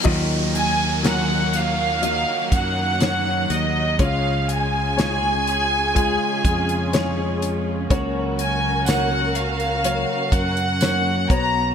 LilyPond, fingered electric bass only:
\new Staff \with { instrumentName = "Fingered electric bass" } { \clef bass \time 4/4 \key fis \major \tempo 4 = 61 dis,2~ dis,16 r16 fis,4 dis,8 | cis,2~ cis,16 r16 eis,4. | cis,2~ cis,16 r16 fis,4 b,,8 | }